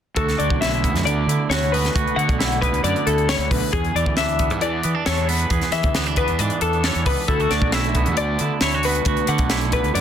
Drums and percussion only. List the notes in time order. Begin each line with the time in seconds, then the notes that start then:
0.16 kick, closed hi-hat
0.29 snare, closed hi-hat
0.40 closed hi-hat
0.50 kick
0.62 snare, closed hi-hat
0.74 closed hi-hat
0.84 kick, closed hi-hat
0.96 snare, closed hi-hat
1.07 closed hi-hat
1.29 closed hi-hat
1.51 snare, closed hi-hat
1.63 closed hi-hat
1.74 open hi-hat
1.85 snare, closed hi-hat
1.96 kick, closed hi-hat
2.07 closed hi-hat
2.19 closed hi-hat
2.29 kick, closed hi-hat
2.40 snare, closed hi-hat
2.52 closed hi-hat
2.62 kick, closed hi-hat
2.74 closed hi-hat
2.84 closed hi-hat
2.96 closed hi-hat
3.07 closed hi-hat
3.18 closed hi-hat
3.29 snare, closed hi-hat
3.40 closed hi-hat
3.51 kick, open hi-hat
3.73 kick, closed hi-hat
3.84 closed hi-hat
3.96 closed hi-hat
4.06 kick
4.17 snare, closed hi-hat
4.29 closed hi-hat
4.39 kick, closed hi-hat
4.50 closed hi-hat
4.61 closed hi-hat
4.83 closed hi-hat
5.06 snare, closed hi-hat
5.17 closed hi-hat
5.29 open hi-hat
5.39 closed hi-hat
5.50 kick, closed hi-hat
5.61 snare, closed hi-hat
5.72 snare, closed hi-hat
5.83 kick, closed hi-hat
5.95 snare, closed hi-hat
6.06 closed hi-hat
6.16 kick, closed hi-hat
6.28 closed hi-hat
6.39 closed hi-hat
6.50 closed hi-hat
6.61 closed hi-hat
6.73 closed hi-hat
6.84 snare, closed hi-hat
6.95 closed hi-hat
7.06 kick, open hi-hat
7.28 kick, closed hi-hat
7.40 closed hi-hat
7.51 snare, closed hi-hat
7.62 kick
7.72 snare, closed hi-hat
7.84 closed hi-hat
7.95 kick, closed hi-hat
8.06 closed hi-hat
8.17 closed hi-hat
8.39 closed hi-hat
8.61 snare, closed hi-hat
8.72 closed hi-hat
8.83 open hi-hat
8.95 closed hi-hat
9.05 kick, closed hi-hat
9.17 closed hi-hat
9.27 closed hi-hat
9.38 kick, closed hi-hat
9.50 snare, closed hi-hat
9.61 closed hi-hat
9.72 kick, closed hi-hat
9.84 closed hi-hat
9.95 closed hi-hat